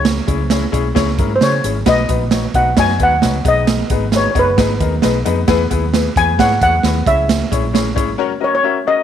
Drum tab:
HH |x-x-x-x-x-x-x-x-|x-x-x-x-x-x-x-x-|x-x-x-x-x-x-x-x-|x-x-x-x-x-x-x-x-|
SD |o---o---oo--o---|o---o---oo--o---|o---o---o---o---|o---o---oo--o---|
BD |--o---o-o-o-----|o-o---o-o-o---o-|--o---o-o-o-----|o-o---o-o-o---o-|

HH |x-x-x-x---------|
SD |o---o-----------|
BD |--o---o---------|